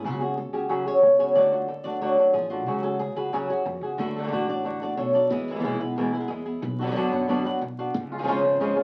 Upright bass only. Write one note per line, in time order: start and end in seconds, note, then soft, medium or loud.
0.04 0.47 C#2 loud
0.53 0.67 C#2 medium
1.02 1.35 C#2 medium
1.35 1.78 D2 loud
1.85 1.99 D2 medium
2.34 2.66 A1 medium
2.66 3.09 C#2 loud
3.16 3.31 C#2 medium
3.65 3.81 F2 medium
3.81 3.97 C#2 medium
3.98 4.27 D2 loud
4.31 4.46 A1 loud
4.48 4.90 A1 medium
4.98 5.26 B1 medium
5.30 5.58 E2 loud
5.64 5.78 B1 loud
5.80 6.22 B1 medium
6.29 6.58 E2 medium
6.62 6.90 B1 loud
6.95 7.09 F#2 medium
7.12 7.54 F#2 medium
7.61 7.89 B1 medium
7.94 8.22 C#2 loud
8.27 8.41 G#1 medium
8.43 8.71 G#1 medium
8.77 8.83 G#2 medium